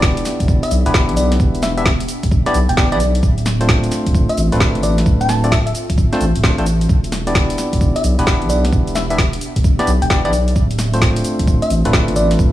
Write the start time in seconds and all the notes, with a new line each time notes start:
Already playing: E1 B3 D4 E4 G4 D5 E5
0.02 kick, snare, cabasa
0.17 closed hi-hat, cabasa
0.25 snare, open hi-hat, cabasa
0.40 E1, kick, closed hi-hat, cabasa
0.48 E1, kick, cabasa
0.63 E5, closed hi-hat, cabasa
0.71 B1, open hi-hat, cabasa
0.86 E1 B3 D4 E4 G4 B4, closed hi-hat, cabasa
0.94 kick, snare, cabasa
1.09 B1, closed hi-hat
1.17 D5, open hi-hat, cabasa
1.32 snare, closed hi-hat, cabasa
1.40 E1, kick, cabasa
1.55 closed hi-hat, cabasa
1.63 E5, snare, open hi-hat, cabasa
1.78 B3 D4 E4 G4 E5, open hi-hat, cabasa
1.86 kick, snare, cabasa
2.00 closed hi-hat, cabasa
2.09 open hi-hat, cabasa
2.23 E1, kick, closed hi-hat, cabasa
2.31 E1, kick, cabasa
2.46 B3 D4 E4 G4 D5, snare, closed hi-hat, cabasa
2.54 B1, open hi-hat, cabasa
2.69 E1 G5, closed hi-hat, cabasa
2.77 B3 D4 E4 G4 D5 G5, kick, snare, cabasa
2.92 B1 B3 D4 E4 G4 D5, closed hi-hat
3.00 open hi-hat, cabasa
3.15 closed hi-hat, cabasa
3.23 D1 C4 F4 A4, kick, cabasa
3.38 closed hi-hat, cabasa
3.46 snare, open hi-hat, cabasa
3.61 A3 C4 D4 F4 C5, closed hi-hat, cabasa
3.69 kick, snare, cabasa
3.84 closed hi-hat, cabasa
3.92 snare, open hi-hat, cabasa
4.07 D1, kick, closed hi-hat, cabasa
4.15 D1, kick, cabasa
4.29 E5, closed hi-hat, cabasa
4.37 A1, open hi-hat, cabasa
4.52 D1 A3 C4 D4 F4 B4, closed hi-hat, cabasa
4.60 kick, snare, cabasa
4.75 A1, closed hi-hat
4.83 D5, open hi-hat, cabasa
4.98 snare, closed hi-hat, cabasa
5.06 D1, kick, cabasa
5.21 G5, closed hi-hat, cabasa
5.29 A5, snare, open hi-hat, cabasa
5.44 A3 C4 D4 F4 D5, open hi-hat, cabasa
5.52 E5, kick, snare, cabasa
5.66 E5, closed hi-hat, cabasa
5.75 open hi-hat, cabasa
5.90 D1, kick, closed hi-hat, cabasa
5.98 D1, kick, cabasa
6.13 A3 C4 D4 F4 C5, snare, closed hi-hat, cabasa
6.21 A1, open hi-hat, cabasa
6.35 D1, closed hi-hat, cabasa
6.43 A3 C4 D4 F4 C5, kick, snare, cabasa
6.58 A1 A3 C4 D4 F4 C5, closed hi-hat
6.66 open hi-hat, cabasa
6.81 closed hi-hat, cabasa
6.89 E1 B3 D4 G4 E5, kick, cabasa
7.04 closed hi-hat, cabasa
7.12 snare, open hi-hat, cabasa
7.27 B3 D4 E4 G4 D5, closed hi-hat, cabasa
7.35 kick, snare, cabasa
7.50 closed hi-hat, cabasa
7.58 snare, open hi-hat, cabasa
7.73 E1, kick, closed hi-hat, cabasa
7.81 E1, kick, cabasa
7.96 E5, closed hi-hat, cabasa
8.04 B1, open hi-hat, cabasa
8.19 E1 B3 D4 E4 G4 B4, closed hi-hat, cabasa
8.27 kick, snare, cabasa
8.42 B1, closed hi-hat
8.49 D5, open hi-hat, cabasa
8.65 snare, closed hi-hat, cabasa
8.73 E1, kick, cabasa
8.88 closed hi-hat, cabasa
8.95 E5, snare, open hi-hat, cabasa
9.10 B3 D4 E4 G4 E5, open hi-hat, cabasa
9.18 kick, snare, cabasa
9.33 closed hi-hat, cabasa
9.41 open hi-hat, cabasa
9.56 E1, kick, closed hi-hat, cabasa
9.64 E1, kick, cabasa
9.79 B3 D4 E4 G4 D5, snare, closed hi-hat, cabasa
9.87 B1, open hi-hat, cabasa
10.02 E1 G5, closed hi-hat, cabasa
10.10 B3 D4 E4 G4 D5 G5, kick, snare, cabasa
10.25 B1 B3 D4 E4 G4 D5, closed hi-hat
10.33 open hi-hat, cabasa
10.48 closed hi-hat, cabasa
10.56 D1 C4 F4 A4, kick, cabasa
10.71 closed hi-hat, cabasa
10.79 snare, open hi-hat, cabasa
10.94 A3 C4 D4 F4 C5, closed hi-hat, cabasa
11.02 kick, snare, cabasa
11.16 closed hi-hat, cabasa
11.24 open hi-hat, cabasa
11.39 D1, kick, closed hi-hat, cabasa
11.47 D1, kick, cabasa
11.62 E5, closed hi-hat, cabasa
11.70 A1, open hi-hat, cabasa
11.85 D1 A3 C4 D4 F4 B4, closed hi-hat, cabasa
11.93 kick, snare, cabasa
12.08 A1, closed hi-hat
12.16 D5, open hi-hat, cabasa
12.31 snare, closed hi-hat, cabasa
12.39 D1, kick, cabasa